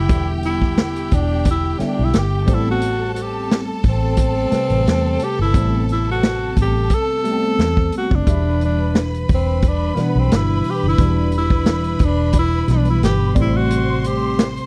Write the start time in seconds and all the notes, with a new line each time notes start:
Already playing: D3 G3 B3 E4 G4 G5
0.09 E1 D3 G3 B3 E4, kick, closed hi-hat
0.43 E4, closed hi-hat
0.62 kick
0.77 snare, closed hi-hat
0.96 closed hi-hat
1.11 E1 D4, kick, closed hi-hat
1.45 kick, closed hi-hat
1.50 E4
1.78 D3 G3 B3 C#4 E4, muted fingered electric bass stroke, snare, closed hi-hat
1.85 D4
1.99 B1
2.05 E4
2.13 G1, snare, closed hi-hat
2.18 G4
2.46 A1 G3 A3 B3 C4 A4 A5, kick, closed hi-hat
2.54 E4
2.71 F#4
2.81 closed hi-hat
3.14 F#4, closed hi-hat
3.21 G4
3.51 snare, closed hi-hat
3.83 A1, kick, open hi-hat
3.89 C4
4.17 kick, closed hi-hat
4.51 C3 G3 A3 B4, muted fingered electric bass stroke, snare, closed hi-hat
4.70 A1, closed hi-hat
4.87 E2, snare, closed hi-hat
5.19 closed hi-hat
5.24 G4
5.39 G1 E4
5.53 A1 G3 A3 B3 C4, kick, closed hi-hat
5.89 E4, closed hi-hat
6.11 F#4
6.23 snare, closed hi-hat
6.56 A1, kick, closed hi-hat
6.62 G4
6.90 kick, closed hi-hat
6.94 A4
7.24 G3 A3 B3, closed hi-hat
7.32 C4
7.59 E2, snare, closed hi-hat
7.77 kick
7.92 closed hi-hat
7.98 F#4
8.11 F#1 D4, kick
8.26 E1 B2 E3 G3 D4 B4 E5 B5, kick, closed hi-hat
8.61 D4, closed hi-hat
8.95 snare, closed hi-hat
9.14 closed hi-hat
9.29 E1, kick, open hi-hat
9.34 C4
9.62 kick, closed hi-hat
9.67 D4
9.95 B2 E3 G3 A#3 D4, muted fingered electric bass stroke, snare, closed hi-hat
10.01 B3
10.15 B1 C4
10.31 G1, snare, closed hi-hat
10.35 E4
10.64 open hi-hat
10.70 G4
10.83 F#1
10.88 E4
10.98 E1 B2 E3 G3 D4, kick, closed hi-hat
11.32 closed hi-hat
11.37 E4
11.50 kick
11.66 snare, closed hi-hat
11.84 closed hi-hat
11.99 E1, kick, closed hi-hat
12.04 D4
12.33 kick, closed hi-hat
12.39 E4
12.67 B1 B2 E3 G3 B3, snare, closed hi-hat
12.72 D4
12.85 closed hi-hat
12.90 E4
13.02 G1 G4, snare, closed hi-hat
13.35 A1 C3 G3 A3 C4 C5 D5 C6, kick, closed hi-hat
13.41 E4
13.57 F#4
13.70 closed hi-hat
13.99 F#4
14.04 G4, closed hi-hat
14.39 snare, closed hi-hat
14.57 closed hi-hat